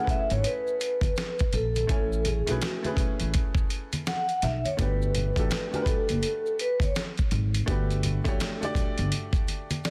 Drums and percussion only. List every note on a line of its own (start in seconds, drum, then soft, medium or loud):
0.07 kick medium
0.07 closed hi-hat medium
0.07 low conga medium
0.07 maracas soft
0.30 closed hi-hat soft
0.30 maracas soft
0.44 closed hi-hat medium
0.44 maracas soft
0.67 maracas soft
0.80 closed hi-hat medium
0.80 maracas soft
1.01 kick medium
1.01 closed hi-hat soft
1.01 high conga medium
1.01 maracas soft
1.16 snare loud
1.16 closed hi-hat medium
1.16 maracas medium
1.39 kick medium
1.39 closed hi-hat soft
1.39 maracas soft
1.53 closed hi-hat medium
1.53 low conga medium
1.53 maracas medium
1.76 closed hi-hat soft
1.76 high conga medium
1.76 maracas soft
1.89 kick loud
1.89 closed hi-hat medium
1.89 maracas medium
2.13 maracas medium
2.25 closed hi-hat medium
2.25 high conga soft
2.25 low conga medium
2.25 maracas soft
2.47 closed hi-hat medium
2.47 maracas soft
2.62 snare loud
2.62 closed hi-hat medium
2.62 maracas medium
2.84 closed hi-hat soft
2.84 high conga medium
2.84 maracas soft
2.97 kick medium
2.97 closed hi-hat medium
2.97 low conga medium
2.97 maracas soft
3.20 closed hi-hat soft
3.20 maracas soft
3.34 kick medium
3.34 closed hi-hat medium
3.34 maracas medium
3.55 kick loud
3.55 maracas soft
3.70 closed hi-hat medium
3.70 maracas soft
3.93 closed hi-hat soft
3.93 high conga medium
3.93 maracas soft
4.07 snare loud
4.07 closed hi-hat medium
4.07 maracas medium
4.29 closed hi-hat soft
4.29 maracas soft
4.42 snare soft
4.42 closed hi-hat medium
4.42 low conga medium
4.42 maracas soft
4.65 closed hi-hat soft
4.65 high conga soft
4.65 maracas soft
4.79 kick loud
4.79 closed hi-hat medium
4.79 maracas medium
5.02 maracas soft
5.15 closed hi-hat medium
5.15 high conga soft
5.15 low conga medium
5.15 maracas soft
5.36 kick medium
5.36 closed hi-hat medium
5.36 maracas soft
5.51 snare loud
5.51 closed hi-hat medium
5.51 maracas medium
5.73 closed hi-hat soft
5.73 high conga medium
5.73 maracas soft
5.86 kick medium
5.86 closed hi-hat medium
5.86 low conga medium
5.86 maracas soft
6.09 closed hi-hat soft
6.09 maracas soft
6.23 closed hi-hat medium
6.23 maracas medium
6.46 maracas soft
6.59 closed hi-hat medium
6.59 maracas soft
6.80 kick medium
6.80 closed hi-hat soft
6.80 high conga medium
6.80 maracas medium
6.95 snare loud
6.95 closed hi-hat medium
6.95 maracas medium
7.17 kick medium
7.17 closed hi-hat soft
7.17 maracas soft
7.31 closed hi-hat medium
7.31 low conga medium
7.31 maracas soft
7.54 closed hi-hat soft
7.54 high conga soft
7.54 maracas soft
7.68 kick loud
7.68 closed hi-hat medium
7.68 maracas medium
7.91 closed hi-hat soft
7.91 maracas medium
8.03 closed hi-hat medium
8.03 high conga soft
8.03 low conga medium
8.03 maracas soft
8.25 kick medium
8.25 closed hi-hat medium
8.25 maracas medium
8.40 snare loud
8.40 closed hi-hat loud
8.40 maracas medium
8.62 closed hi-hat soft
8.62 high conga soft
8.62 maracas soft
8.75 kick medium
8.75 closed hi-hat medium
8.75 low conga medium
8.75 maracas soft
8.98 closed hi-hat soft
8.98 maracas soft
9.12 closed hi-hat medium
9.12 maracas medium
9.33 kick medium
9.33 closed hi-hat soft
9.33 maracas soft
9.48 closed hi-hat medium
9.48 high conga soft
9.48 maracas soft
9.70 closed hi-hat soft
9.70 high conga medium
9.70 maracas medium
9.84 snare loud
9.84 closed hi-hat medium
9.84 maracas medium